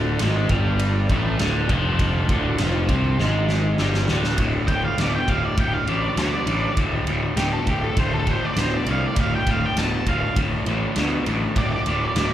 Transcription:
Already playing: picked electric bass D1, overdriven electric guitar D2 D3, tonewheel organ D4 F4 A4 D5
0.19 picked electric bass G#1, overdriven electric guitar G#2 G#3, snare, ride
0.49 picked electric bass G1, overdriven electric guitar G2 G3, kick, ride
0.79 ride
1.09 picked electric bass A1, overdriven electric guitar A2 A3, kick, ride
1.39 picked electric bass D1, overdriven electric guitar D2 D3, snare, ride
1.69 picked electric bass F1, overdriven electric guitar F2 F3, kick, ride
1.99 tonewheel organ D4 F4 A5, kick, ride
2.29 picked electric bass D1, overdriven electric guitar D2 D3, kick, ride
2.58 picked electric bass F1, overdriven electric guitar F2 F3, snare, ride
2.89 picked electric bass C2, overdriven electric guitar C3 C4, kick, ride
3.19 picked electric bass G#1, overdriven electric guitar G#2 G#3, snare
3.49 snare
3.78 picked electric bass G1, overdriven electric guitar G2 G3, snare
3.94 snare
4.08 picked electric bass D1, overdriven electric guitar D2 D3, tonewheel organ G3, snare
4.12 tonewheel organ A3 B3
4.17 tonewheel organ C4 D4
4.23 tonewheel organ E4 F4, snare
4.29 tonewheel organ G4 A4
4.34 picked electric bass D1, tonewheel organ B4 C5, kick, ride
4.38 overdriven electric guitar D2 A2, tonewheel organ D#4 F#4 A#4 D#5
4.58 tonewheel organ D4 F4 A4 D5
4.68 picked electric bass D1, overdriven electric guitar D2 A2, lead electric guitar G5, kick, ride
4.85 lead electric guitar F5
4.98 picked electric bass D1, overdriven electric guitar D2 B2, lead electric guitar D5, snare, ride
5.15 lead electric guitar G5
5.28 picked electric bass D1, overdriven electric guitar D2 A2, lead electric guitar F5, kick, ride
5.44 lead electric guitar D5
5.57 picked electric bass D1, overdriven electric guitar D2 A2, lead electric guitar G5, kick, ride
5.74 lead electric guitar F5
5.87 picked electric bass A1, overdriven electric guitar D2 A2, lead electric guitar D5, ride
6.17 picked electric bass D2, overdriven electric guitar D2 B2, lead electric guitar D5, snare, ride
6.46 picked electric bass A1, overdriven electric guitar D2 A2, ride
6.77 picked electric bass D1, overdriven electric guitar D2 A2, tonewheel organ F4 A4 D5, kick, ride
7.05 picked electric bass D1, overdriven electric guitar D2 A2, ride
7.36 picked electric bass D1, overdriven electric guitar D2 B2, lead electric guitar G4, snare, ride
7.53 lead electric guitar A4
7.67 picked electric bass D1, overdriven electric guitar D2 A2, lead electric guitar G4, kick, ride
7.84 lead electric guitar A4
7.96 picked electric bass D1, overdriven electric guitar D2 A2, lead electric guitar C5, kick, ride
8.14 lead electric guitar A4
8.26 overdriven electric guitar D2 A2, kick, ride
8.31 lead electric guitar C5
8.45 lead electric guitar D5
8.56 picked electric bass D1, overdriven electric guitar D2 B2, lead electric guitar C5, snare, ride
8.76 lead electric guitar D5
8.86 picked electric bass C2, overdriven electric guitar D2 A2, ride
8.91 lead electric guitar F5
9.06 lead electric guitar D5
9.16 picked electric bass D1, overdriven electric guitar D2 A2, tonewheel organ F4 A4 D5, kick, ride
9.21 lead electric guitar F5
9.35 lead electric guitar G5
9.46 picked electric bass D1, overdriven electric guitar D2 A2, kick, ride
9.51 lead electric guitar F5
9.66 lead electric guitar G5
9.76 picked electric bass D1, overdriven electric guitar D2 B2, lead electric guitar A5, snare, ride
10.06 picked electric bass D1, overdriven electric guitar D2 A2, lead electric guitar F5, kick, ride
10.36 picked electric bass D1, overdriven electric guitar D2 A2, kick, ride
10.66 picked electric bass A1, overdriven electric guitar D2 A2, ride
10.96 overdriven electric guitar D2 B2, picked electric bass D2, snare, ride
11.26 picked electric bass A1, overdriven electric guitar D2 A2, ride
11.55 picked electric bass D1, overdriven electric guitar D2 A2, tonewheel organ D4 F4 A4 D5, lead electric guitar D5, kick, ride
11.73 lead electric guitar D5
11.86 picked electric bass D1, overdriven electric guitar D2 A2, ride
12.16 picked electric bass D1, overdriven electric guitar D2 B2, snare, ride

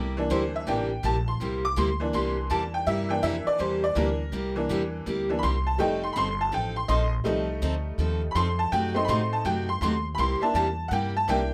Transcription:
Already playing: upright bass C2, steel-string acoustic guitar C3 G3 A#3 E4 G4
0.17 honky-tonk piano E3 A#3 D4
0.30 upright bass D2, steel-string acoustic guitar C3 G3 A#3 E4 G4, honky-tonk piano C5
0.56 honky-tonk piano E5
0.67 upright bass A1, steel-string acoustic guitar C3 G3 A#3 E4 G4, honky-tonk piano E3 A#3 D4 G5
1.03 upright bass A#1, steel-string acoustic guitar C3 G3 A#3 E4 G4, honky-tonk piano A5
1.28 honky-tonk piano C6
1.40 upright bass C2, steel-string acoustic guitar C3 G3 A#3 E4 G4
1.65 honky-tonk piano D6
1.76 upright bass D2, steel-string acoustic guitar C3 G3 A#3 E4 G4, honky-tonk piano C6
2.00 honky-tonk piano E3 A#3 D4
2.13 upright bass C2, steel-string acoustic guitar C3 G3 A#3 E4 G4, honky-tonk piano C6
2.50 upright bass E2, steel-string acoustic guitar C3 G3 A#3 E4 G4, honky-tonk piano A5
2.74 honky-tonk piano G5
2.86 upright bass G2, steel-string acoustic guitar C3 G3 A#3 E4 G4, honky-tonk piano E5
3.09 honky-tonk piano E3 A#3 D4 G5
3.23 upright bass F2, steel-string acoustic guitar C3 G3 A#3 E4 G4, honky-tonk piano E5
3.47 honky-tonk piano D5, muted upright bass stroke
3.58 upright bass E2, steel-string acoustic guitar C3 G3 A#3 E4 G4, honky-tonk piano C5
3.84 honky-tonk piano D5
3.95 upright bass D2, steel-string acoustic guitar C3 G3 A#3 E4 G4, honky-tonk piano E3 A#3 D4 A#4
4.32 upright bass C2, steel-string acoustic guitar C3 G3 A#3 E4 G4
4.56 honky-tonk piano E3 A#3 D4
4.69 upright bass E2, steel-string acoustic guitar C3 G3 A#3 E4 G4
5.06 upright bass D2, steel-string acoustic guitar C3 G3 A#3 E4 G4
5.29 honky-tonk piano E3 A#3 D4
5.39 honky-tonk piano B5
5.43 upright bass C2, steel-string acoustic guitar C3 G3 A#3 E4 G4, honky-tonk piano C6
5.67 honky-tonk piano A5
5.78 upright bass F1, steel-string acoustic guitar F3 C4 D#4 A4, honky-tonk piano G3 A3 D#4 G5
6.03 honky-tonk piano C6
6.13 upright bass G1, steel-string acoustic guitar F3 C4 D#4 A4, honky-tonk piano B5
6.17 honky-tonk piano C6
6.41 honky-tonk piano A5
6.52 upright bass A1, steel-string acoustic guitar F3 C4 D#4 A4, honky-tonk piano G5
6.76 honky-tonk piano C6
6.88 upright bass A#1, steel-string acoustic guitar F3 C4 D#4 A4, honky-tonk piano D#5 C6
7.24 upright bass C2, steel-string acoustic guitar F3 C4 D#4 A4, honky-tonk piano G3 A3 D#4
7.62 upright bass D2, steel-string acoustic guitar F3 C4 D#4 A4
7.98 upright bass D#2, steel-string acoustic guitar F3 C4 D#4 A4
8.31 upright bass F2, honky-tonk piano B5
8.35 steel-string acoustic guitar F3 C4 D#4 A4, honky-tonk piano C6
8.59 honky-tonk piano A5
8.72 upright bass F#2, steel-string acoustic guitar C3 F#3 A3 D#4 F#4, honky-tonk piano G5
8.94 honky-tonk piano A3 C4 D#4 C6
9.05 upright bass A2, steel-string acoustic guitar C3 F#3, honky-tonk piano B5
9.09 steel-string acoustic guitar A3 D#4 F#4, honky-tonk piano C6
9.33 honky-tonk piano A5
9.45 upright bass F#2, steel-string acoustic guitar C3 F#3 A3 D#4 F#4, honky-tonk piano G5
9.69 honky-tonk piano C6
9.81 upright bass D#2, steel-string acoustic guitar C3 F#3 A3 D#4 F#4, honky-tonk piano C6
10.15 upright bass C2, steel-string acoustic guitar C3 G3, honky-tonk piano B5
10.19 steel-string acoustic guitar A#3 E4 G4, honky-tonk piano C6
10.41 honky-tonk piano A#3 D4 E4 A5, muted upright bass stroke
10.54 upright bass E2, steel-string acoustic guitar C3 G3 A#3 E4 G4, honky-tonk piano A5
10.88 upright bass G2, steel-string acoustic guitar C3 G3 A#3 E4, honky-tonk piano F#5
10.92 steel-string acoustic guitar G4, honky-tonk piano G5
11.17 honky-tonk piano A5
11.28 upright bass C2, steel-string acoustic guitar C3 G3 A#3 E4 G4, honky-tonk piano A#3 D4 E4 G5

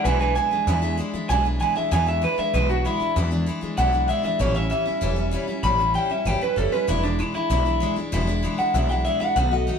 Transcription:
0.04 upright bass B1, steel-string acoustic guitar E2 B2 E3 G#3 D4 E4, clean electric guitar B4 G#5
0.19 steel-string acoustic guitar E3 G#3 D4 E4, clean electric guitar B4 G#5
0.35 steel-string acoustic guitar E3 G#3 D4 E4, clean electric guitar G#5
0.51 steel-string acoustic guitar E3 G#3 D4 E4, muted upright bass stroke
0.67 upright bass E2, steel-string acoustic guitar E2 B2 E3 G#3 D4 E4
0.82 steel-string acoustic guitar E3 G#3 D4 E4
0.97 steel-string acoustic guitar E3 G#3 D4 E4
1.14 steel-string acoustic guitar E3 G#3 D4 E4, muted upright bass stroke
1.29 upright bass B1, steel-string acoustic guitar E2 B2 E3 G#3 D4 E4, clean electric guitar G#5
1.44 steel-string acoustic guitar E3 G#3 D4 E4
1.60 steel-string acoustic guitar E3 G#3 D4 E4, clean electric guitar G#5
1.75 steel-string acoustic guitar E3 G#3 D4 E4, clean electric guitar E5, muted upright bass stroke
1.91 steel-string acoustic guitar E2 B2 E3 G#3 D4 E4, upright bass E2, clean electric guitar G#5
2.06 steel-string acoustic guitar E3 G#3 D4 E4, clean electric guitar E5
2.22 steel-string acoustic guitar E3 G#3 D4 E4, clean electric guitar B4
2.38 steel-string acoustic guitar E3 G#3 D4 E4, clean electric guitar E5, muted upright bass stroke
2.54 upright bass B1, steel-string acoustic guitar E2 B2 E3 G#3 D4 E4, clean electric guitar B4
2.69 steel-string acoustic guitar E3 G#3 D4 E4, clean electric guitar F#4
2.85 steel-string acoustic guitar E3 G#3 D4 E4, clean electric guitar E4
3.00 steel-string acoustic guitar E3 G#3 D4 E4, muted upright bass stroke
3.16 steel-string acoustic guitar E2 B2 E3 G#3 D4 E4, upright bass E2
3.31 steel-string acoustic guitar E3 G#3 D4 E4
3.46 steel-string acoustic guitar E3 G#3 D4 E4
3.61 steel-string acoustic guitar E3 G#3 D4 E4, muted upright bass stroke
3.77 upright bass B1, steel-string acoustic guitar E2 B2 E3 G#3 D4 E4, clean electric guitar F#5
3.93 steel-string acoustic guitar E3 G#3 D4 E4
4.08 steel-string acoustic guitar E3 G#3 D4 E4, clean electric guitar E5
4.23 steel-string acoustic guitar E3 G#3 D4 E4, clean electric guitar E5, muted upright bass stroke
4.39 upright bass A1, steel-string acoustic guitar A2 E3 G3 C#4 E4, clean electric guitar C#5
4.55 steel-string acoustic guitar G3 C#4 E4, clean electric guitar E5
4.70 steel-string acoustic guitar E3 G3 C#4 E4, clean electric guitar E5
4.86 steel-string acoustic guitar G3 C#4 E4, muted upright bass stroke
5.01 upright bass E1, steel-string acoustic guitar A2 E3 G3 C#4 E4
5.16 steel-string acoustic guitar G3 C#4 E4
5.31 steel-string acoustic guitar E3 G3 C#4 E4
5.48 steel-string acoustic guitar G3 C#4 E4, muted upright bass stroke
5.63 upright bass A1, steel-string acoustic guitar A2 E3 G3 C#4 E4, clean electric guitar B5
5.79 steel-string acoustic guitar G3 C#4 E4
5.94 steel-string acoustic guitar E3 G3 C#4 E4, clean electric guitar G5
6.10 steel-string acoustic guitar G3 C#4 E4, clean electric guitar E5, muted upright bass stroke
6.25 upright bass G1, steel-string acoustic guitar A2 E3 G3 C#4 E4, clean electric guitar G5
6.41 steel-string acoustic guitar G3 C#4 E4, clean electric guitar B4
6.56 upright bass F#1, steel-string acoustic guitar E3 G3 C#4 E4, clean electric guitar A4
6.72 steel-string acoustic guitar G3 C#4 E4, clean electric guitar B4, muted upright bass stroke
6.87 upright bass E1, steel-string acoustic guitar E2 B2 E3 G#3 D4 E4, clean electric guitar E4
7.03 steel-string acoustic guitar E3 G#3 D4 E4, clean electric guitar D4
7.19 steel-string acoustic guitar E3 G#3 D4 E4, clean electric guitar E4
7.34 steel-string acoustic guitar E3 G#3 D4 E4, clean electric guitar E4, muted upright bass stroke
7.50 upright bass B1, steel-string acoustic guitar E2 B2 E3 G#3 D4 E4
7.65 steel-string acoustic guitar E3 G#3 D4 E4
7.80 steel-string acoustic guitar E3 G#3 D4 E4
7.96 steel-string acoustic guitar E3 G#3 D4 E4, muted upright bass stroke
8.12 upright bass E1, steel-string acoustic guitar E2 B2 E3 G#3 D4 E4
8.27 steel-string acoustic guitar E3 G#3 D4 E4
8.43 steel-string acoustic guitar E3 G#3 D4 E4
8.58 steel-string acoustic guitar E3 G#3 D4 E4, clean electric guitar F#5, muted upright bass stroke
8.74 upright bass B1, steel-string acoustic guitar E2 B2 E3 G#3 D4 E4, clean electric guitar E5
8.89 steel-string acoustic guitar E3 G#3 D4 E4, clean electric guitar F#5
9.05 steel-string acoustic guitar E3 G#3 D4 E4, clean electric guitar E5
9.20 steel-string acoustic guitar E3 G#3 D4 E4, clean electric guitar F#5, muted upright bass stroke
9.36 upright bass B1, steel-string acoustic guitar B2 D#3 A3 B3 F#4, clean electric guitar F#5
9.51 steel-string acoustic guitar A3 B3 F#4, clean electric guitar D#5
9.67 steel-string acoustic guitar D#3 A3 B3 F#4

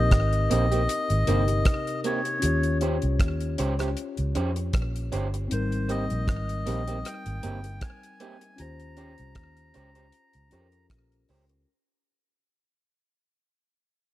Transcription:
Already playing: fingered electric bass A#1, tine electric piano C4 D#4 G4 A#4, melodica D#5
0.11 fingered electric bass G#1, kick, cross-stick, closed hi-hat
0.33 closed hi-hat
0.50 fingered electric bass A#1, clean electric guitar A#3 C4 G4, melodica D#5, closed hi-hat
0.71 clean electric guitar A#3 C4 G4, closed hi-hat
0.89 closed hi-hat
1.10 fingered electric bass G#1, closed hi-hat
1.26 fingered electric bass G1, tine electric piano C3 D#4 G4 A#4, clean electric guitar A#3 C4 G4, closed hi-hat
1.48 muted clean electric guitar stroke, closed hi-hat
1.65 kick, cross-stick, closed hi-hat
1.87 closed hi-hat
2.04 clean electric guitar A#3 C4 G4, melodica C#5, closed hi-hat
2.25 muted clean electric guitar stroke, closed hi-hat
2.40 fingered electric bass D#2, tine electric piano C#4 F4, closed hi-hat
2.44 tine electric piano G4 C#5
2.63 closed hi-hat
2.81 clean electric guitar C#4 G4 C5, closed hi-hat
3.02 fingered electric bass C2, closed hi-hat
3.20 fingered electric bass D#2, kick, cross-stick, closed hi-hat
3.40 closed hi-hat
3.58 fingered electric bass C#2, clean electric guitar C#4 G4 C5, closed hi-hat
3.79 clean electric guitar C#4 G4 C5, cross-stick, closed hi-hat
3.97 closed hi-hat
4.17 fingered electric bass C#2, closed hi-hat
4.35 fingered electric bass F2, clean electric guitar C#4 G4 C5, closed hi-hat
4.56 muted clean electric guitar stroke, closed hi-hat
4.73 fingered electric bass A#1, kick, cross-stick, closed hi-hat
4.96 closed hi-hat
5.12 fingered electric bass G1, clean electric guitar C#4 G4 C5, closed hi-hat
5.34 muted clean electric guitar stroke, closed hi-hat
5.48 fingered electric bass G#1, tine electric piano C4 D#4, melodica C5, closed hi-hat
5.52 tine electric piano G3 A#4
5.72 closed hi-hat
5.89 clean electric guitar A#3 C4 G4, melodica D#5, closed hi-hat
6.10 fingered electric bass A#1, closed hi-hat
6.28 fingered electric bass G#1, kick, cross-stick, closed hi-hat
6.49 closed hi-hat
6.66 fingered electric bass A#1, clean electric guitar A#3 C4 G4, closed hi-hat
6.87 clean electric guitar A#3 C4 G4, closed hi-hat
7.05 melodica G5, cross-stick, closed hi-hat
7.26 fingered electric bass G#1, closed hi-hat
7.43 fingered electric bass G1, clean electric guitar A#3 C4 G4, closed hi-hat
7.64 muted clean electric guitar stroke, closed hi-hat
7.81 melodica G#5, kick, cross-stick, closed hi-hat
8.03 closed hi-hat
8.20 clean electric guitar A#3 C4 G4, closed hi-hat
8.41 muted clean electric guitar stroke, closed hi-hat
8.56 fingered electric bass D#2, tine electric piano C#4 F4 G4, melodica A#5, closed hi-hat
8.62 tine electric piano C5
8.80 closed hi-hat
8.97 clean electric guitar C#4 G4 C5, closed hi-hat
9.18 fingered electric bass C2, closed hi-hat
9.35 fingered electric bass D#2, kick, cross-stick, closed hi-hat
9.57 closed hi-hat
9.74 fingered electric bass C#2, clean electric guitar C#4 G4 C5, closed hi-hat
9.95 clean electric guitar C#4 G4 C5, closed hi-hat
10.12 closed hi-hat
10.33 fingered electric bass C#2, closed hi-hat
10.50 fingered electric bass F2, tine electric piano C#4 F4 G4 A4, clean electric guitar C#4 G4 C5, closed hi-hat
10.60 tine electric piano A#4
10.72 muted clean electric guitar stroke, closed hi-hat
10.90 fingered electric bass A#1, kick, cross-stick, closed hi-hat
11.12 closed hi-hat
11.29 fingered electric bass C#2, clean electric guitar C#4 G4 C5, open hi-hat
11.49 muted clean electric guitar stroke, closed hi-hat

